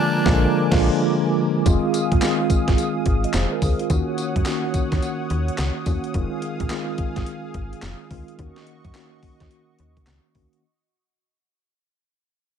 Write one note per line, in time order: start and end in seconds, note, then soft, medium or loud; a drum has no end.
0.00 0.32 D3 loud
0.00 0.25 F3 loud
0.00 0.26 G#3 loud
0.00 0.26 A#3 loud
0.00 1.06 D4 loud
0.00 0.26 F4 loud
0.00 1.64 A#4 medium
0.00 1.63 G#5 medium
0.00 1.64 D6 medium
0.25 0.46 A#1 loud
0.25 0.46 F3 loud
0.25 0.46 G#3 loud
0.25 0.46 A#3 loud
0.25 0.46 F4 medium
0.25 kick loud
0.25 snare loud
0.32 0.49 D3 loud
0.72 0.89 A#1 loud
0.72 0.89 F3 loud
0.72 0.90 G#3 loud
0.72 0.90 A#3 loud
0.72 0.90 F4 loud
0.72 kick loud
0.72 snare loud
0.72 crash medium
0.78 0.93 D3 loud
1.66 1.78 F1 loud
1.66 2.11 D#3 loud
1.66 2.11 G#3 medium
1.66 2.11 C4 medium
1.66 2.11 F4 loud
1.66 3.88 G#4 medium
1.66 3.88 F5 medium
1.66 3.88 D#6 medium
1.66 kick loud
1.66 closed hi-hat medium
1.66 tambourine medium
1.94 closed hi-hat medium
1.94 tambourine medium
2.12 2.19 A#1 medium
2.12 kick loud
2.12 closed hi-hat medium
2.22 3.05 D#3 medium
2.22 3.05 G#3 medium
2.22 3.05 C4 medium
2.22 3.05 F4 medium
2.22 snare loud
2.22 clap medium
2.22 closed hi-hat medium
2.22 tambourine loud
2.50 2.57 G#1 soft
2.50 kick loud
2.50 closed hi-hat medium
2.50 tambourine medium
2.68 2.75 G#1 loud
2.68 kick loud
2.68 snare medium
2.68 closed hi-hat medium
2.78 closed hi-hat medium
2.78 tambourine medium
3.06 3.26 G#1 medium
3.06 kick medium
3.06 closed hi-hat medium
3.24 3.34 D#5 medium
3.24 closed hi-hat medium
3.34 3.46 F1 loud
3.34 3.51 C5 medium
3.34 snare loud
3.34 clap medium
3.34 closed hi-hat medium
3.34 tambourine loud
3.53 3.62 A#4 medium
3.62 3.74 D2 medium
3.62 3.79 G#4 medium
3.62 kick medium
3.62 open hi-hat medium
3.62 tambourine medium
3.79 4.07 F4 medium
3.79 closed hi-hat soft
3.90 4.02 D#2 loud
3.90 4.35 D#3 loud
3.90 4.35 A#3 medium
3.90 4.35 C#4 medium
3.90 4.36 F#4 loud
3.90 6.12 C#5 medium
3.90 6.12 F#5 medium
3.90 8.35 D#6 medium
3.90 kick loud
3.90 closed hi-hat medium
3.90 tambourine medium
4.18 closed hi-hat medium
4.18 tambourine medium
4.36 4.43 F#2 medium
4.36 kick loud
4.36 closed hi-hat medium
4.46 5.29 D#3 medium
4.46 5.29 A#3 medium
4.46 5.29 C#4 medium
4.46 5.30 F#4 loud
4.46 snare loud
4.46 clap loud
4.46 closed hi-hat medium
4.46 tambourine loud
4.74 4.81 D#2 soft
4.74 kick loud
4.74 closed hi-hat medium
4.74 tambourine medium
4.92 4.99 D#2 medium
4.92 kick loud
4.92 snare medium
4.92 closed hi-hat medium
5.02 closed hi-hat medium
5.02 tambourine medium
5.30 5.50 D#2 loud
5.30 closed hi-hat medium
5.48 closed hi-hat medium
5.58 5.71 C#2 loud
5.58 snare loud
5.58 clap loud
5.58 closed hi-hat medium
5.58 tambourine loud
5.86 5.99 E2 medium
5.86 6.09 D#3 medium
5.86 6.09 A#3 medium
5.86 6.09 C#4 medium
5.86 6.09 F#4 medium
5.86 kick medium
5.86 open hi-hat medium
5.86 tambourine medium
6.04 closed hi-hat soft
6.14 6.27 F1 loud
6.14 6.59 D#3 loud
6.14 6.59 G#3 medium
6.14 6.60 C4 medium
6.14 6.60 F4 loud
6.14 8.36 G#4 medium
6.14 8.36 F5 medium
6.14 kick loud
6.14 closed hi-hat medium
6.42 closed hi-hat medium
6.60 6.67 A#1 medium
6.60 kick medium
6.60 closed hi-hat medium
6.70 7.53 D#3 medium
6.70 7.53 G#3 medium
6.70 7.54 C4 medium
6.70 7.54 F4 loud
6.70 snare loud
6.70 clap loud
6.70 closed hi-hat medium
6.98 7.06 G#1 medium
6.98 kick loud
6.98 closed hi-hat medium
7.16 7.24 G#1 loud
7.16 kick medium
7.16 snare medium
7.16 closed hi-hat medium
7.26 closed hi-hat medium
7.54 7.74 G#1 medium
7.54 kick loud
7.54 closed hi-hat medium
7.73 closed hi-hat soft
7.82 7.95 F1 medium
7.82 snare loud
7.82 clap loud
7.82 closed hi-hat medium
8.11 8.23 D2 medium
8.11 8.33 D#3 medium
8.11 8.33 G#3 medium
8.11 8.34 C4 medium
8.11 8.34 F4 medium
8.11 kick medium
8.11 open hi-hat medium
8.28 closed hi-hat medium
8.38 8.51 D#2 loud
8.38 8.83 D#3 medium
8.38 8.84 A#3 medium
8.38 8.84 C#4 medium
8.38 10.61 F#4 medium
8.38 8.84 F#4 loud
8.38 10.61 D#5 medium
8.38 10.61 C#6 medium
8.38 kick loud
8.38 closed hi-hat medium
8.56 snare medium
8.67 closed hi-hat medium
8.85 8.92 F#2 medium
8.85 kick loud
8.85 closed hi-hat medium
8.95 9.78 D#3 medium
8.95 9.78 A#3 medium
8.95 9.78 C#4 medium
8.95 9.78 F#4 loud
8.95 snare loud
8.95 clap medium
8.95 closed hi-hat medium
9.23 9.30 D#2 soft
9.23 kick medium
9.23 open hi-hat medium
9.40 9.48 D#2 loud
9.40 kick medium
9.40 snare medium
9.40 closed hi-hat medium
9.51 closed hi-hat medium
9.79 9.99 D#2 medium
9.79 closed hi-hat medium
9.97 kick loud
9.97 closed hi-hat soft
10.07 10.20 C#2 loud
10.07 snare loud
10.07 clap loud
10.07 closed hi-hat medium
10.35 10.48 D2 medium
10.35 10.58 D#3 medium
10.35 10.58 A#3 medium
10.35 10.58 C#4 medium
10.35 10.58 F#4 medium
10.35 kick medium
10.35 open hi-hat medium
10.53 closed hi-hat soft